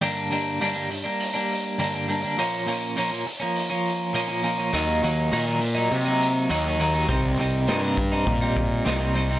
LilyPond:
<<
  \new Staff \with { instrumentName = "Clean electric guitar" } { \time 4/4 \key g \minor \tempo 4 = 102 <g, d g bes d'>8 <d g bes d'>8 <g, d g bes d'>16 <g bes d'>8 <g bes d'>8 <g bes d'>8. <g, d g bes d'>16 <g bes d'>16 <d g bes d'>16 <g bes d'>16 | <bes, f bes des'>8 <bes, f bes des'>8 <bes, f bes des'>16 <f bes des'>8 <f bes des'>8 <f bes des'>8. <bes, f bes des'>16 <f bes des'>16 <bes, f bes des'>16 <f bes des'>16 | <ees ges bes ees'>8 <ees ges bes ees'>8 <ees ges bes ees'>16 <ges bes ees'>8 <ges bes ees'>8 <ges bes ees'>8. <ees ges bes ees'>16 <ges bes ees'>16 <ees ges bes ees'>16 <ges bes ees'>16 | <c g c' ees'>8 <c g c' ees'>8 <c g c' ees'>16 <g c' ees'>8 <g c' ees'>8 <g c' ees'>8. <c g c' ees'>16 <g c' ees'>16 <c g c' ees'>16 <g c' ees'>16 | }
  \new Staff \with { instrumentName = "Picked electric bass" } { \clef bass \time 4/4 \key g \minor r1 | r1 | ees,8 ees,8 bes,4 c4 ees,4 | c,8 c,8 g,4 bes,4 c,4 | }
  \new DrumStaff \with { instrumentName = "Drums" } \drummode { \time 4/4 hho8 hho8 hho8 hho8 hho8 hho8 hho8 hho8 | hho8 hho8 hho8 hho8 hho8 hho8 hho8 hho8 | hho8 hho8 hho8 hho8 hho8 hho8 hho8 hho8 | <hho bd>8 hho8 <hho sn>8 <hho bd>8 <hho bd>8 <hho bd>8 <hho sn>8 hho8 | }
>>